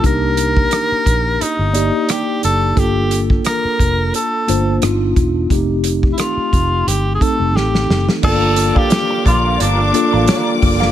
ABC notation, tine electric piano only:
X:1
M:4/4
L:1/16
Q:"Swing 16ths" 1/4=88
K:Gm
V:1 name="Tine electric piano"
[B,DEG]4- [B,DEG] z4 z [B,EGd]4 z2 | [B,DFA]4- [B,DFA] z4 z [B,DFc]2 [=B,DEF]4 | [A,CEG]4- [A,CEG] z4 z [A,CEA]4 z2 | [B,DFA]4- [B,DFA] z4 z [B,DFA]4 z2 |]